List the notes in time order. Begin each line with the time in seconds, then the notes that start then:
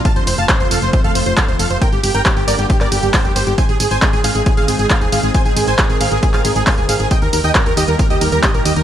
Already playing: C3
0.05 F3 A3 F4 F5 A5, kick, closed hi-hat, ride, tambourine
0.16 F1 C5, closed hi-hat, tambourine
0.27 F1 C5, open hi-hat, ride, tambourine
0.38 F1 F5 A5, closed hi-hat, tambourine
0.49 C5, kick, clap, closed hi-hat, ride, tambourine
0.60 F1 C5, closed hi-hat, tambourine
0.71 F1 A4 F5, open hi-hat, ride, tambourine
0.82 F1 C5, closed hi-hat, tambourine
0.93 C5, kick, closed hi-hat, ride, tambourine
1.04 F1 A4 F5, closed hi-hat, tambourine
1.15 F1 C5, open hi-hat, ride, tambourine
1.26 F1 C5, closed hi-hat, tambourine
1.37 A4 F5, kick, clap, closed hi-hat, ride, tambourine
1.48 D#1 C5, closed hi-hat, tambourine
1.59 F1 A4 F5, open hi-hat, ride, tambourine
1.70 F1 C5, closed hi-hat, tambourine
1.81 D3 G3 A#3 G4 A#4 G5, kick, closed hi-hat, ride, tambourine
1.92 G1 G4, closed hi-hat, tambourine
2.03 G1 G4, open hi-hat, ride, tambourine
2.14 G1 A#4 G5, closed hi-hat, tambourine
2.25 G4, kick, clap, closed hi-hat, ride, tambourine
2.36 G1 G4, closed hi-hat, tambourine
2.47 G1 A#4 D5, open hi-hat, ride, tambourine
2.59 G1 G4, closed hi-hat, tambourine
2.70 G4, kick, closed hi-hat, ride, tambourine
2.81 G1 A#4 D5, clap, closed hi-hat, tambourine
2.92 G1 G4, open hi-hat, ride, tambourine
3.03 G1 G4, closed hi-hat, tambourine
3.14 G4 C5, kick, clap, open hi-hat, ride, tambourine
3.25 F1 G4, closed hi-hat, tambourine
3.36 G1 G4 C5, open hi-hat, ride, tambourine
3.47 G1 G4, closed hi-hat, tambourine
3.58 D#3 G#3 C4 G#4 C5 G#5, kick, closed hi-hat, ride, tambourine
3.69 G#1 G#4, closed hi-hat, tambourine
3.80 G#1 G#4, open hi-hat, ride, tambourine
3.91 G#1 C5 G#5, closed hi-hat, tambourine
4.02 G#4, kick, clap, closed hi-hat, ride, tambourine
4.13 G#1 G#4, closed hi-hat, tambourine
4.24 G#1 G#4 F5, open hi-hat, ride, tambourine
4.35 G#1 G#4, closed hi-hat, tambourine
4.46 G#4, kick, closed hi-hat, ride, tambourine
4.57 G#1 G#4 F5, closed hi-hat, tambourine
4.68 G#1 G#4, open hi-hat, ride, tambourine
4.79 G#1 G#4, closed hi-hat, tambourine
4.90 G#4 F5, kick, clap, closed hi-hat, ride, tambourine
5.01 D#1 G#4, closed hi-hat, tambourine
5.12 G#1 G#4 F5, open hi-hat, ride, tambourine
5.23 G#1 G#4, closed hi-hat, tambourine
5.34 A#4 C5 G#5, kick, closed hi-hat, ride, tambourine
5.45 G#1 G#4, closed hi-hat, tambourine
5.56 G#1 G#4, open hi-hat, ride, tambourine
5.68 G#1 C5 G#5, closed hi-hat, tambourine
5.79 G#4, kick, clap, closed hi-hat, ride, tambourine
5.90 G#1 G#4, closed hi-hat, tambourine
6.01 G#1 G#4 F5, open hi-hat, ride, tambourine
6.12 G#1 G#4, closed hi-hat, tambourine
6.23 G#4, kick, closed hi-hat, ride, tambourine
6.34 G#1 G#4 F5, clap, closed hi-hat, tambourine
6.45 G#1 G#4, open hi-hat, ride, tambourine
6.56 G#1 G#4, closed hi-hat, tambourine
6.67 G#4 F5, kick, clap, open hi-hat, ride, tambourine
6.78 D#1 G#4, closed hi-hat, tambourine
6.89 G#1 G#4 F5, open hi-hat, ride, tambourine
7.00 G#1 G#4, closed hi-hat, tambourine
7.11 G3 A#3 G4 D#5 G5, kick, closed hi-hat, ride, tambourine
7.22 D#2 A#4, closed hi-hat, tambourine
7.33 D#2 A#4, open hi-hat, ride, tambourine
7.44 D#2 D#5 G5, closed hi-hat, tambourine
7.55 A#4, kick, clap, closed hi-hat, ride, tambourine
7.66 D#2 A#4, closed hi-hat, tambourine
7.77 D#2 G4 D#5, open hi-hat, ride, tambourine
7.88 D#2 A#4, closed hi-hat, tambourine
7.99 A#4, kick, closed hi-hat, ride, tambourine
8.10 D#2 G4 D#5, closed hi-hat, tambourine
8.21 D#2 A#4, open hi-hat, ride, tambourine
8.32 D#2 A#4, closed hi-hat, tambourine
8.43 G4 D#5, kick, clap, closed hi-hat, ride, tambourine
8.54 A#1 A#4, closed hi-hat, tambourine
8.65 D#2 G4 D#5, open hi-hat, ride, tambourine
8.76 D#2 A#4, closed hi-hat, tambourine